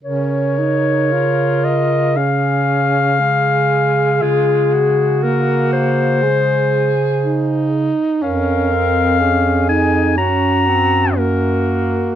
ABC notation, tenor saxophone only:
X:1
M:4/4
L:1/8
Q:1/4=60
K:Db
V:1 name="Tenor saxophone"
D E F2 D2 A,2- | A,2 B,2 A, z E2 | D C D E D C B,2 |]